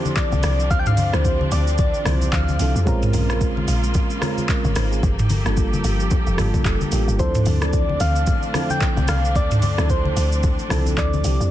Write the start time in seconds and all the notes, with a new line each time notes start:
Already playing: D3 E3 F3 C4 D4 E4 G4 A4 C5
0.05 high conga, shaker
0.16 D5, kick, clap, shaker
0.32 C2, high conga, shaker
0.43 C2, cross-stick, open hi-hat, shaker
0.60 shaker
0.71 D2 F5, kick, low conga, shaker
0.79 G5
0.86 F5, mid tom, shaker
0.97 open hi-hat, high conga, shaker
1.12 D2 F3 C4 D4 E4 G4 C5, cross-stick, shaker
1.25 kick, shaker
1.41 high conga
1.52 D2 D5, open hi-hat, shaker
1.67 shaker
1.78 D5, kick, low conga, shaker
1.94 shaker
2.05 C2 F3 C4 D4 E4 C5, cross-stick, open hi-hat, high conga, shaker
2.21 high conga, shaker
2.33 D2 F5, kick, clap, shaker
2.48 high conga, shaker
2.59 C2 F3 C4 D4 E4 A4, open hi-hat, shaker
2.75 F2, shaker
2.85 A#1 C#3 G#3 A#3 C4 C#4 F4 A#4, kick, low conga, shaker
3.02 mid tom, shaker
3.13 A#1, open hi-hat, high conga, shaker
3.28 G#3 C4 C#4 F4 A#4, cross-stick, shaker
3.41 kick, shaker
3.57 high conga
3.68 A#1, open hi-hat, shaker
3.84 shaker
3.94 kick, low conga, shaker
4.10 shaker
4.20 G#3 C4 C#4 F4 A#4, cross-stick, open hi-hat, high conga, shaker
4.38 high conga, shaker
4.49 kick, clap, shaker
4.65 G#1 F4 C#5, high conga, shaker
4.76 G#1 D#4 C5, cross-stick, open hi-hat, shaker
4.92 C4 G#4, shaker
5.03 G1 F3 G4 A4, kick, low conga, shaker
5.19 mid tom, shaker
5.30 open hi-hat, high conga, shaker
5.44 G1 G3 A#3 D4 F4 A4, cross-stick, shaker
5.57 kick, shaker
5.73 high conga, shaker
5.84 G1, open hi-hat, shaker
6.00 shaker
6.11 kick, low conga, shaker
6.27 F1, shaker
6.37 G1 G3 A#3 D4 F4 A4, cross-stick, mid tom, open hi-hat, high conga, shaker
6.54 kick, high conga, shaker
6.65 F1, kick, clap, shaker
6.81 high conga, shaker
6.91 A1 G3 A#3 D4 F4 G4, open hi-hat, shaker
7.08 G1, shaker
7.18 D2 D3 F3 A3 C4 D4 E4 A4 C5, kick, low conga, shaker
7.35 mid tom, shaker
7.46 D2, open hi-hat, high conga, shaker
7.61 E3 F3 C4 D4 A4 D5, cross-stick, shaker
7.73 kick, shaker
7.89 high conga
8.00 D2 F5, open hi-hat, shaker
8.16 shaker
8.27 kick, low conga, shaker
8.42 shaker
8.53 F3 C4 D4 E4 A4, cross-stick, open hi-hat, high conga, shaker
8.70 G5, high conga, shaker
8.81 kick, clap, shaker
8.97 C2, high conga, shaker
9.08 C2 F5, cross-stick, open hi-hat, shaker
9.25 shaker
9.35 D2 D5, kick, low conga, shaker
9.51 mid tom, shaker
9.62 D5, open hi-hat, high conga, shaker
9.77 D2 F3 C4 D4 E4 A4, cross-stick, shaker
9.90 C5, kick, shaker
10.05 high conga
10.16 D2, open hi-hat, shaker
10.32 shaker
10.43 kick, low conga, shaker
10.59 shaker
10.69 C2 F3 C4 D4 E4 A4, cross-stick, open hi-hat, high conga, shaker
10.86 high conga, shaker
10.98 D2 D5, kick, clap, shaker
11.13 high conga, shaker
11.23 C2 F3 C4 D4 E4 G4, open hi-hat, shaker
11.40 F2, shaker